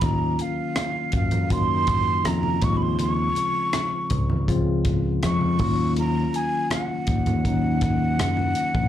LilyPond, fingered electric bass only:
\new Staff \with { instrumentName = "Fingered electric bass" } { \clef bass \time 4/4 \key ees \dorian \tempo 4 = 81 ees,8 r4 ges,4. f,8 ees,8~ | ees,8 r4 des,4. f,8 ees,8~ | ees,8 r4 ees,4. ges,8 r16 bes,,16 | }